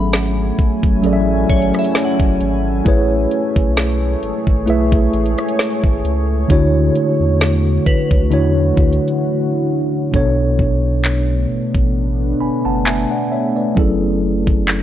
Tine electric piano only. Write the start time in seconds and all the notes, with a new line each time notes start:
Already playing: F#3 C#4 G#4 A4 E5
1.02 F#3 C#4 G#4 A4 D5
1.13 E5
2.84 A3 E4 G#4 B4
2.88 C#5
4.66 A3 E4 G#4 B4
4.70 E5
6.48 D3 D4 E4 F#4 C#5
8.30 D3 D4 E4 F#4 C#5
10.12 B2 B3 D4 A4
10.16 C#5
12.40 G#5 B5
12.65 F#5 A5
12.86 E5 G#5
13.11 D5 F#5
13.32 C#5 E5
13.56 B4 D5
13.75 F#3 C#4 E4 G#4
13.79 A4